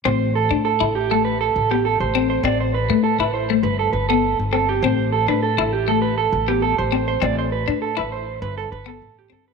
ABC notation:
X:1
M:4/4
L:1/16
Q:1/4=100
K:Am
V:1 name="Clean electric guitar"
c2 A z A2 G A B A2 G A c2 c | d c B2 A B c2 B A B A2 z A G | c2 A B A2 G A B A2 G A c2 c | d c B2 A B c2 B A B A2 G A B |]
V:2 name="Clean electric guitar"
C2 z D2 E2 A,2 z2 B,2 z C2 | C2 z A,2 E2 A,2 z2 B,2 z C2 | C2 z D2 E2 A,2 z2 B,2 z C2 | C2 z D2 E2 z4 B,2 z C2 |]
V:3 name="Upright bass" clef=bass
A,,,3 A,,2 A,,,4- A,,, A,,,3 A,,,3 | A,,,3 A,,2 A,,,3 G,,,2 G,,,3 G,,,3 | A,,,3 A,,2 A,,,4- A,,, A,,,3 A,,,3 | A,,,3 A,,2 A,,,3 G,,,2 G,,,2 A,,,2 G,,,2 |]